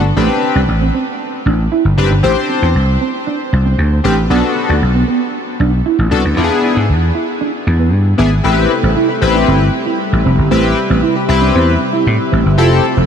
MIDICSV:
0, 0, Header, 1, 6, 480
1, 0, Start_track
1, 0, Tempo, 517241
1, 156, Time_signature, 4, 2, 24, 8
1, 12120, End_track
2, 0, Start_track
2, 0, Title_t, "Analog polysynth"
2, 0, Program_c, 0, 90
2, 153, Note_on_c, 0, 60, 86
2, 156, Note_on_c, 0, 62, 84
2, 158, Note_on_c, 0, 67, 77
2, 161, Note_on_c, 0, 71, 90
2, 554, Note_off_c, 0, 60, 0
2, 556, Note_off_c, 0, 62, 0
2, 557, Note_off_c, 0, 67, 0
2, 558, Note_off_c, 0, 71, 0
2, 1832, Note_on_c, 0, 60, 88
2, 1835, Note_on_c, 0, 62, 83
2, 1837, Note_on_c, 0, 67, 76
2, 1840, Note_on_c, 0, 71, 92
2, 1934, Note_off_c, 0, 60, 0
2, 1936, Note_off_c, 0, 62, 0
2, 1936, Note_off_c, 0, 67, 0
2, 1938, Note_off_c, 0, 71, 0
2, 2069, Note_on_c, 0, 60, 85
2, 2073, Note_on_c, 0, 62, 81
2, 2075, Note_on_c, 0, 67, 82
2, 2078, Note_on_c, 0, 72, 103
2, 2473, Note_off_c, 0, 60, 0
2, 2474, Note_off_c, 0, 62, 0
2, 2476, Note_off_c, 0, 67, 0
2, 2477, Note_off_c, 0, 72, 0
2, 3749, Note_on_c, 0, 60, 86
2, 3752, Note_on_c, 0, 62, 79
2, 3754, Note_on_c, 0, 67, 85
2, 3757, Note_on_c, 0, 71, 99
2, 3852, Note_off_c, 0, 60, 0
2, 3854, Note_off_c, 0, 62, 0
2, 3855, Note_off_c, 0, 67, 0
2, 3857, Note_off_c, 0, 71, 0
2, 3992, Note_on_c, 0, 59, 88
2, 3994, Note_on_c, 0, 62, 77
2, 3996, Note_on_c, 0, 66, 83
2, 3999, Note_on_c, 0, 69, 86
2, 4394, Note_off_c, 0, 59, 0
2, 4395, Note_off_c, 0, 62, 0
2, 4396, Note_off_c, 0, 66, 0
2, 4397, Note_off_c, 0, 69, 0
2, 5670, Note_on_c, 0, 59, 84
2, 5673, Note_on_c, 0, 62, 81
2, 5675, Note_on_c, 0, 66, 82
2, 5677, Note_on_c, 0, 69, 99
2, 5773, Note_off_c, 0, 59, 0
2, 5774, Note_off_c, 0, 62, 0
2, 5776, Note_off_c, 0, 66, 0
2, 5776, Note_off_c, 0, 69, 0
2, 5909, Note_on_c, 0, 59, 82
2, 5912, Note_on_c, 0, 62, 83
2, 5914, Note_on_c, 0, 64, 82
2, 5917, Note_on_c, 0, 65, 77
2, 5974, Note_off_c, 0, 65, 0
2, 5974, Note_on_c, 0, 68, 89
2, 6313, Note_off_c, 0, 59, 0
2, 6314, Note_off_c, 0, 62, 0
2, 6315, Note_off_c, 0, 64, 0
2, 6345, Note_off_c, 0, 68, 0
2, 7590, Note_on_c, 0, 59, 89
2, 7594, Note_on_c, 0, 62, 83
2, 7595, Note_on_c, 0, 64, 80
2, 7599, Note_on_c, 0, 68, 96
2, 7693, Note_off_c, 0, 59, 0
2, 7695, Note_off_c, 0, 62, 0
2, 7696, Note_off_c, 0, 64, 0
2, 7697, Note_off_c, 0, 68, 0
2, 7830, Note_on_c, 0, 60, 90
2, 7833, Note_on_c, 0, 64, 80
2, 7837, Note_on_c, 0, 67, 77
2, 7838, Note_on_c, 0, 71, 95
2, 8083, Note_off_c, 0, 60, 0
2, 8084, Note_off_c, 0, 64, 0
2, 8086, Note_off_c, 0, 67, 0
2, 8087, Note_off_c, 0, 71, 0
2, 8432, Note_on_c, 0, 67, 91
2, 8438, Note_on_c, 0, 71, 101
2, 8484, Note_off_c, 0, 67, 0
2, 8487, Note_off_c, 0, 71, 0
2, 8552, Note_on_c, 0, 60, 92
2, 8552, Note_on_c, 0, 64, 82
2, 8555, Note_on_c, 0, 67, 88
2, 8559, Note_on_c, 0, 71, 97
2, 8954, Note_off_c, 0, 60, 0
2, 8954, Note_off_c, 0, 64, 0
2, 8955, Note_off_c, 0, 67, 0
2, 8958, Note_off_c, 0, 71, 0
2, 9754, Note_on_c, 0, 60, 93
2, 9757, Note_on_c, 0, 64, 86
2, 9759, Note_on_c, 0, 67, 85
2, 9761, Note_on_c, 0, 71, 103
2, 10005, Note_off_c, 0, 60, 0
2, 10007, Note_off_c, 0, 64, 0
2, 10008, Note_off_c, 0, 67, 0
2, 10008, Note_off_c, 0, 71, 0
2, 10352, Note_on_c, 0, 67, 93
2, 10360, Note_on_c, 0, 71, 100
2, 10404, Note_off_c, 0, 67, 0
2, 10408, Note_off_c, 0, 71, 0
2, 10473, Note_on_c, 0, 60, 96
2, 10476, Note_on_c, 0, 64, 77
2, 10478, Note_on_c, 0, 67, 83
2, 10481, Note_on_c, 0, 71, 105
2, 10875, Note_off_c, 0, 60, 0
2, 10876, Note_off_c, 0, 64, 0
2, 10877, Note_off_c, 0, 67, 0
2, 10878, Note_off_c, 0, 71, 0
2, 11670, Note_on_c, 0, 60, 84
2, 11673, Note_on_c, 0, 64, 76
2, 11675, Note_on_c, 0, 67, 79
2, 11678, Note_on_c, 0, 69, 105
2, 11923, Note_off_c, 0, 60, 0
2, 11925, Note_off_c, 0, 64, 0
2, 11926, Note_off_c, 0, 67, 0
2, 11927, Note_off_c, 0, 69, 0
2, 12120, End_track
3, 0, Start_track
3, 0, Title_t, "Clean electric guitar"
3, 0, Program_c, 1, 27
3, 156, Note_on_c, 1, 57, 87
3, 255, Note_off_c, 1, 57, 0
3, 515, Note_on_c, 1, 62, 71
3, 614, Note_off_c, 1, 62, 0
3, 756, Note_on_c, 1, 60, 72
3, 855, Note_off_c, 1, 60, 0
3, 876, Note_on_c, 1, 60, 85
3, 975, Note_off_c, 1, 60, 0
3, 1358, Note_on_c, 1, 62, 80
3, 1456, Note_off_c, 1, 62, 0
3, 1594, Note_on_c, 1, 64, 76
3, 1694, Note_off_c, 1, 64, 0
3, 1954, Note_on_c, 1, 62, 83
3, 2053, Note_off_c, 1, 62, 0
3, 2074, Note_on_c, 1, 57, 77
3, 2174, Note_off_c, 1, 57, 0
3, 2314, Note_on_c, 1, 60, 60
3, 2413, Note_off_c, 1, 60, 0
3, 2794, Note_on_c, 1, 60, 73
3, 2894, Note_off_c, 1, 60, 0
3, 3034, Note_on_c, 1, 62, 88
3, 3133, Note_off_c, 1, 62, 0
3, 3393, Note_on_c, 1, 60, 72
3, 3493, Note_off_c, 1, 60, 0
3, 3753, Note_on_c, 1, 57, 73
3, 3853, Note_off_c, 1, 57, 0
3, 3993, Note_on_c, 1, 59, 86
3, 4093, Note_off_c, 1, 59, 0
3, 4354, Note_on_c, 1, 62, 71
3, 4453, Note_off_c, 1, 62, 0
3, 4594, Note_on_c, 1, 59, 75
3, 4693, Note_off_c, 1, 59, 0
3, 4716, Note_on_c, 1, 59, 84
3, 4815, Note_off_c, 1, 59, 0
3, 5196, Note_on_c, 1, 62, 76
3, 5295, Note_off_c, 1, 62, 0
3, 5437, Note_on_c, 1, 64, 84
3, 5535, Note_off_c, 1, 64, 0
3, 5793, Note_on_c, 1, 62, 77
3, 5893, Note_off_c, 1, 62, 0
3, 5913, Note_on_c, 1, 62, 78
3, 6013, Note_off_c, 1, 62, 0
3, 6155, Note_on_c, 1, 64, 66
3, 6254, Note_off_c, 1, 64, 0
3, 6635, Note_on_c, 1, 64, 74
3, 6734, Note_off_c, 1, 64, 0
3, 6876, Note_on_c, 1, 62, 85
3, 6975, Note_off_c, 1, 62, 0
3, 7233, Note_on_c, 1, 59, 66
3, 7333, Note_off_c, 1, 59, 0
3, 7594, Note_on_c, 1, 59, 78
3, 7694, Note_off_c, 1, 59, 0
3, 7835, Note_on_c, 1, 57, 77
3, 7934, Note_off_c, 1, 57, 0
3, 8195, Note_on_c, 1, 60, 67
3, 8294, Note_off_c, 1, 60, 0
3, 8316, Note_on_c, 1, 64, 81
3, 8415, Note_off_c, 1, 64, 0
3, 8676, Note_on_c, 1, 62, 77
3, 8775, Note_off_c, 1, 62, 0
3, 8794, Note_on_c, 1, 60, 92
3, 8894, Note_off_c, 1, 60, 0
3, 9152, Note_on_c, 1, 64, 79
3, 9252, Note_off_c, 1, 64, 0
3, 9513, Note_on_c, 1, 60, 76
3, 9613, Note_off_c, 1, 60, 0
3, 9753, Note_on_c, 1, 57, 83
3, 9853, Note_off_c, 1, 57, 0
3, 10113, Note_on_c, 1, 60, 80
3, 10213, Note_off_c, 1, 60, 0
3, 10233, Note_on_c, 1, 64, 90
3, 10333, Note_off_c, 1, 64, 0
3, 10594, Note_on_c, 1, 62, 78
3, 10694, Note_off_c, 1, 62, 0
3, 10715, Note_on_c, 1, 60, 101
3, 10814, Note_off_c, 1, 60, 0
3, 11072, Note_on_c, 1, 64, 82
3, 11172, Note_off_c, 1, 64, 0
3, 11433, Note_on_c, 1, 60, 84
3, 11533, Note_off_c, 1, 60, 0
3, 11675, Note_on_c, 1, 65, 82
3, 11774, Note_off_c, 1, 65, 0
3, 12035, Note_on_c, 1, 60, 79
3, 12120, Note_off_c, 1, 60, 0
3, 12120, End_track
4, 0, Start_track
4, 0, Title_t, "Analog synth pad"
4, 0, Program_c, 2, 89
4, 7836, Note_on_c, 2, 48, 82
4, 7836, Note_on_c, 2, 57, 78
4, 7837, Note_on_c, 2, 55, 70
4, 7837, Note_on_c, 2, 76, 84
4, 9737, Note_off_c, 2, 57, 0
4, 9760, Note_on_c, 2, 71, 68
4, 11639, Note_off_c, 2, 55, 0
4, 11659, Note_off_c, 2, 71, 0
4, 11671, Note_on_c, 2, 53, 70
4, 11674, Note_on_c, 2, 57, 74
4, 12120, Note_off_c, 2, 48, 0
4, 12120, Note_off_c, 2, 53, 0
4, 12120, Note_off_c, 2, 57, 0
4, 12120, Note_off_c, 2, 76, 0
4, 12120, End_track
5, 0, Start_track
5, 0, Title_t, "Slap bass"
5, 0, Program_c, 3, 36
5, 0, Note_on_c, 3, 31, 84
5, 104, Note_off_c, 3, 31, 0
5, 155, Note_on_c, 3, 33, 100
5, 250, Note_off_c, 3, 33, 0
5, 515, Note_on_c, 3, 36, 88
5, 610, Note_off_c, 3, 36, 0
5, 634, Note_on_c, 3, 33, 91
5, 824, Note_off_c, 3, 33, 0
5, 1354, Note_on_c, 3, 33, 90
5, 1544, Note_off_c, 3, 33, 0
5, 1716, Note_on_c, 3, 31, 82
5, 1810, Note_off_c, 3, 31, 0
5, 1837, Note_on_c, 3, 30, 86
5, 1931, Note_off_c, 3, 30, 0
5, 1954, Note_on_c, 3, 31, 89
5, 2049, Note_off_c, 3, 31, 0
5, 2073, Note_on_c, 3, 33, 104
5, 2169, Note_off_c, 3, 33, 0
5, 2434, Note_on_c, 3, 40, 96
5, 2529, Note_off_c, 3, 40, 0
5, 2554, Note_on_c, 3, 36, 85
5, 2744, Note_off_c, 3, 36, 0
5, 3274, Note_on_c, 3, 36, 86
5, 3464, Note_off_c, 3, 36, 0
5, 3511, Note_on_c, 3, 38, 91
5, 3702, Note_off_c, 3, 38, 0
5, 3756, Note_on_c, 3, 33, 83
5, 3945, Note_off_c, 3, 33, 0
5, 3994, Note_on_c, 3, 35, 97
5, 4089, Note_off_c, 3, 35, 0
5, 4357, Note_on_c, 3, 38, 94
5, 4451, Note_off_c, 3, 38, 0
5, 4474, Note_on_c, 3, 35, 96
5, 4664, Note_off_c, 3, 35, 0
5, 5196, Note_on_c, 3, 35, 93
5, 5385, Note_off_c, 3, 35, 0
5, 5556, Note_on_c, 3, 33, 87
5, 5651, Note_off_c, 3, 33, 0
5, 5679, Note_on_c, 3, 36, 84
5, 5773, Note_off_c, 3, 36, 0
5, 5800, Note_on_c, 3, 38, 88
5, 5893, Note_off_c, 3, 38, 0
5, 5917, Note_on_c, 3, 40, 91
5, 6011, Note_off_c, 3, 40, 0
5, 6280, Note_on_c, 3, 44, 75
5, 6399, Note_on_c, 3, 40, 92
5, 6413, Note_off_c, 3, 44, 0
5, 6587, Note_off_c, 3, 40, 0
5, 7117, Note_on_c, 3, 40, 84
5, 7359, Note_off_c, 3, 40, 0
5, 7359, Note_on_c, 3, 43, 96
5, 7547, Note_off_c, 3, 43, 0
5, 7601, Note_on_c, 3, 32, 91
5, 7788, Note_off_c, 3, 32, 0
5, 7838, Note_on_c, 3, 33, 119
5, 8026, Note_off_c, 3, 33, 0
5, 8196, Note_on_c, 3, 33, 86
5, 8291, Note_off_c, 3, 33, 0
5, 8556, Note_on_c, 3, 33, 90
5, 8745, Note_off_c, 3, 33, 0
5, 8799, Note_on_c, 3, 31, 117
5, 8987, Note_off_c, 3, 31, 0
5, 9398, Note_on_c, 3, 33, 86
5, 9492, Note_off_c, 3, 33, 0
5, 9520, Note_on_c, 3, 29, 83
5, 9613, Note_off_c, 3, 29, 0
5, 9636, Note_on_c, 3, 31, 87
5, 9731, Note_off_c, 3, 31, 0
5, 9759, Note_on_c, 3, 33, 110
5, 9947, Note_off_c, 3, 33, 0
5, 10117, Note_on_c, 3, 33, 99
5, 10211, Note_off_c, 3, 33, 0
5, 10477, Note_on_c, 3, 36, 89
5, 10666, Note_off_c, 3, 36, 0
5, 10719, Note_on_c, 3, 40, 104
5, 10906, Note_off_c, 3, 40, 0
5, 11198, Note_on_c, 3, 45, 100
5, 11292, Note_off_c, 3, 45, 0
5, 11439, Note_on_c, 3, 33, 85
5, 11532, Note_off_c, 3, 33, 0
5, 11561, Note_on_c, 3, 31, 96
5, 11678, Note_off_c, 3, 31, 0
5, 11678, Note_on_c, 3, 29, 96
5, 11866, Note_off_c, 3, 29, 0
5, 12037, Note_on_c, 3, 29, 92
5, 12120, Note_off_c, 3, 29, 0
5, 12120, End_track
6, 0, Start_track
6, 0, Title_t, "Muted clean electric guitar strokes"
6, 396, Note_on_c, 9, 29, 40
6, 489, Note_off_c, 9, 29, 0
6, 633, Note_on_c, 9, 29, 44
6, 726, Note_off_c, 9, 29, 0
6, 1834, Note_on_c, 9, 29, 48
6, 1926, Note_off_c, 9, 29, 0
6, 2436, Note_on_c, 9, 29, 45
6, 2529, Note_off_c, 9, 29, 0
6, 3274, Note_on_c, 9, 29, 47
6, 3366, Note_off_c, 9, 29, 0
6, 4233, Note_on_c, 9, 29, 45
6, 4325, Note_off_c, 9, 29, 0
6, 4473, Note_on_c, 9, 29, 43
6, 4566, Note_off_c, 9, 29, 0
6, 5674, Note_on_c, 9, 29, 50
6, 5767, Note_off_c, 9, 29, 0
6, 6275, Note_on_c, 9, 29, 45
6, 6368, Note_off_c, 9, 29, 0
6, 7115, Note_on_c, 9, 29, 44
6, 7208, Note_off_c, 9, 29, 0
6, 8075, Note_on_c, 9, 29, 41
6, 8168, Note_off_c, 9, 29, 0
6, 8436, Note_on_c, 9, 29, 51
6, 8529, Note_off_c, 9, 29, 0
6, 9034, Note_on_c, 9, 29, 52
6, 9127, Note_off_c, 9, 29, 0
6, 9994, Note_on_c, 9, 29, 43
6, 10087, Note_off_c, 9, 29, 0
6, 10353, Note_on_c, 9, 29, 48
6, 10446, Note_off_c, 9, 29, 0
6, 10957, Note_on_c, 9, 29, 51
6, 11050, Note_off_c, 9, 29, 0
6, 11914, Note_on_c, 9, 29, 44
6, 12007, Note_off_c, 9, 29, 0
6, 12120, End_track
0, 0, End_of_file